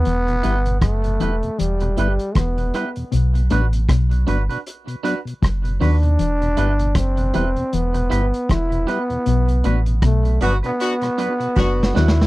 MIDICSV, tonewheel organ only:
0, 0, Header, 1, 2, 480
1, 0, Start_track
1, 0, Key_signature, 1, "minor"
1, 0, Tempo, 767263
1, 35, Time_signature, 4, 2, 24, 8
1, 7675, End_track
2, 0, Start_track
2, 0, Title_t, "Tonewheel organ"
2, 0, Program_c, 0, 16
2, 178, Note_on_c, 0, 40, 62
2, 180, Note_on_c, 0, 47, 59
2, 226, Note_off_c, 0, 40, 0
2, 227, Note_off_c, 0, 47, 0
2, 276, Note_on_c, 0, 55, 70
2, 277, Note_on_c, 0, 59, 68
2, 277, Note_on_c, 0, 64, 71
2, 344, Note_off_c, 0, 55, 0
2, 344, Note_off_c, 0, 64, 0
2, 345, Note_off_c, 0, 59, 0
2, 412, Note_on_c, 0, 47, 51
2, 413, Note_on_c, 0, 40, 52
2, 463, Note_off_c, 0, 47, 0
2, 464, Note_off_c, 0, 40, 0
2, 653, Note_on_c, 0, 40, 55
2, 654, Note_on_c, 0, 47, 56
2, 704, Note_off_c, 0, 40, 0
2, 704, Note_off_c, 0, 47, 0
2, 753, Note_on_c, 0, 55, 69
2, 757, Note_on_c, 0, 59, 63
2, 757, Note_on_c, 0, 64, 75
2, 823, Note_off_c, 0, 55, 0
2, 824, Note_off_c, 0, 59, 0
2, 825, Note_off_c, 0, 64, 0
2, 894, Note_on_c, 0, 40, 54
2, 894, Note_on_c, 0, 47, 53
2, 944, Note_off_c, 0, 40, 0
2, 944, Note_off_c, 0, 47, 0
2, 1136, Note_on_c, 0, 40, 58
2, 1138, Note_on_c, 0, 47, 58
2, 1185, Note_off_c, 0, 40, 0
2, 1186, Note_off_c, 0, 47, 0
2, 1231, Note_on_c, 0, 55, 78
2, 1233, Note_on_c, 0, 59, 73
2, 1234, Note_on_c, 0, 64, 81
2, 1302, Note_off_c, 0, 55, 0
2, 1303, Note_off_c, 0, 59, 0
2, 1303, Note_off_c, 0, 64, 0
2, 1613, Note_on_c, 0, 47, 58
2, 1615, Note_on_c, 0, 40, 60
2, 1664, Note_off_c, 0, 47, 0
2, 1665, Note_off_c, 0, 40, 0
2, 1714, Note_on_c, 0, 55, 67
2, 1716, Note_on_c, 0, 59, 61
2, 1717, Note_on_c, 0, 64, 78
2, 1783, Note_off_c, 0, 55, 0
2, 1784, Note_off_c, 0, 59, 0
2, 1785, Note_off_c, 0, 64, 0
2, 1857, Note_on_c, 0, 40, 57
2, 1857, Note_on_c, 0, 47, 58
2, 1906, Note_off_c, 0, 40, 0
2, 1906, Note_off_c, 0, 47, 0
2, 2096, Note_on_c, 0, 47, 60
2, 2145, Note_off_c, 0, 47, 0
2, 2191, Note_on_c, 0, 54, 69
2, 2194, Note_on_c, 0, 59, 63
2, 2195, Note_on_c, 0, 62, 78
2, 2262, Note_off_c, 0, 54, 0
2, 2264, Note_off_c, 0, 59, 0
2, 2264, Note_off_c, 0, 62, 0
2, 2334, Note_on_c, 0, 47, 52
2, 2384, Note_off_c, 0, 47, 0
2, 2572, Note_on_c, 0, 47, 55
2, 2623, Note_off_c, 0, 47, 0
2, 2668, Note_on_c, 0, 54, 69
2, 2669, Note_on_c, 0, 59, 66
2, 2671, Note_on_c, 0, 62, 73
2, 2740, Note_off_c, 0, 54, 0
2, 2741, Note_off_c, 0, 59, 0
2, 2742, Note_off_c, 0, 62, 0
2, 2812, Note_on_c, 0, 47, 53
2, 2863, Note_off_c, 0, 47, 0
2, 3048, Note_on_c, 0, 47, 58
2, 3102, Note_off_c, 0, 47, 0
2, 3149, Note_on_c, 0, 54, 76
2, 3149, Note_on_c, 0, 59, 65
2, 3154, Note_on_c, 0, 62, 87
2, 3221, Note_off_c, 0, 54, 0
2, 3221, Note_off_c, 0, 59, 0
2, 3224, Note_off_c, 0, 62, 0
2, 3286, Note_on_c, 0, 47, 52
2, 3341, Note_off_c, 0, 47, 0
2, 3529, Note_on_c, 0, 47, 57
2, 3582, Note_off_c, 0, 47, 0
2, 3627, Note_on_c, 0, 54, 72
2, 3627, Note_on_c, 0, 59, 67
2, 3631, Note_on_c, 0, 62, 75
2, 3700, Note_off_c, 0, 54, 0
2, 3700, Note_off_c, 0, 59, 0
2, 3702, Note_off_c, 0, 62, 0
2, 3773, Note_on_c, 0, 47, 58
2, 3824, Note_off_c, 0, 47, 0
2, 4013, Note_on_c, 0, 40, 62
2, 4014, Note_on_c, 0, 47, 61
2, 4064, Note_off_c, 0, 40, 0
2, 4065, Note_off_c, 0, 47, 0
2, 4113, Note_on_c, 0, 55, 69
2, 4115, Note_on_c, 0, 59, 63
2, 4118, Note_on_c, 0, 64, 76
2, 4183, Note_off_c, 0, 55, 0
2, 4184, Note_off_c, 0, 59, 0
2, 4185, Note_off_c, 0, 64, 0
2, 4251, Note_on_c, 0, 47, 56
2, 4252, Note_on_c, 0, 40, 52
2, 4303, Note_off_c, 0, 47, 0
2, 4304, Note_off_c, 0, 40, 0
2, 4490, Note_on_c, 0, 40, 61
2, 4492, Note_on_c, 0, 47, 57
2, 4543, Note_off_c, 0, 40, 0
2, 4544, Note_off_c, 0, 47, 0
2, 4588, Note_on_c, 0, 55, 71
2, 4590, Note_on_c, 0, 59, 63
2, 4593, Note_on_c, 0, 64, 77
2, 4661, Note_off_c, 0, 55, 0
2, 4662, Note_off_c, 0, 59, 0
2, 4663, Note_off_c, 0, 64, 0
2, 4729, Note_on_c, 0, 40, 53
2, 4731, Note_on_c, 0, 47, 52
2, 4782, Note_off_c, 0, 40, 0
2, 4783, Note_off_c, 0, 47, 0
2, 4970, Note_on_c, 0, 40, 61
2, 4971, Note_on_c, 0, 47, 56
2, 5023, Note_off_c, 0, 40, 0
2, 5023, Note_off_c, 0, 47, 0
2, 5070, Note_on_c, 0, 55, 75
2, 5072, Note_on_c, 0, 59, 69
2, 5073, Note_on_c, 0, 64, 84
2, 5142, Note_off_c, 0, 55, 0
2, 5143, Note_off_c, 0, 59, 0
2, 5143, Note_off_c, 0, 64, 0
2, 5450, Note_on_c, 0, 47, 61
2, 5452, Note_on_c, 0, 40, 62
2, 5503, Note_off_c, 0, 47, 0
2, 5504, Note_off_c, 0, 40, 0
2, 5555, Note_on_c, 0, 55, 70
2, 5557, Note_on_c, 0, 59, 68
2, 5558, Note_on_c, 0, 64, 71
2, 5624, Note_off_c, 0, 55, 0
2, 5625, Note_off_c, 0, 59, 0
2, 5626, Note_off_c, 0, 64, 0
2, 5692, Note_on_c, 0, 40, 56
2, 5694, Note_on_c, 0, 47, 59
2, 5744, Note_off_c, 0, 40, 0
2, 5745, Note_off_c, 0, 47, 0
2, 5940, Note_on_c, 0, 47, 56
2, 5988, Note_off_c, 0, 47, 0
2, 6037, Note_on_c, 0, 54, 70
2, 6039, Note_on_c, 0, 59, 66
2, 6041, Note_on_c, 0, 62, 76
2, 6105, Note_off_c, 0, 54, 0
2, 6106, Note_off_c, 0, 59, 0
2, 6107, Note_off_c, 0, 62, 0
2, 6175, Note_on_c, 0, 47, 50
2, 6225, Note_off_c, 0, 47, 0
2, 6417, Note_on_c, 0, 47, 54
2, 6466, Note_off_c, 0, 47, 0
2, 6515, Note_on_c, 0, 54, 69
2, 6517, Note_on_c, 0, 59, 59
2, 6519, Note_on_c, 0, 62, 79
2, 6584, Note_off_c, 0, 54, 0
2, 6585, Note_off_c, 0, 59, 0
2, 6586, Note_off_c, 0, 62, 0
2, 6658, Note_on_c, 0, 47, 56
2, 6707, Note_off_c, 0, 47, 0
2, 6892, Note_on_c, 0, 47, 56
2, 6943, Note_off_c, 0, 47, 0
2, 6994, Note_on_c, 0, 54, 74
2, 6995, Note_on_c, 0, 59, 66
2, 6998, Note_on_c, 0, 62, 83
2, 7064, Note_off_c, 0, 54, 0
2, 7064, Note_off_c, 0, 59, 0
2, 7066, Note_off_c, 0, 62, 0
2, 7131, Note_on_c, 0, 47, 52
2, 7183, Note_off_c, 0, 47, 0
2, 7370, Note_on_c, 0, 47, 59
2, 7423, Note_off_c, 0, 47, 0
2, 7467, Note_on_c, 0, 59, 64
2, 7468, Note_on_c, 0, 54, 70
2, 7473, Note_on_c, 0, 62, 82
2, 7540, Note_off_c, 0, 59, 0
2, 7541, Note_off_c, 0, 54, 0
2, 7543, Note_off_c, 0, 62, 0
2, 7611, Note_on_c, 0, 47, 57
2, 7663, Note_off_c, 0, 47, 0
2, 7675, End_track
0, 0, End_of_file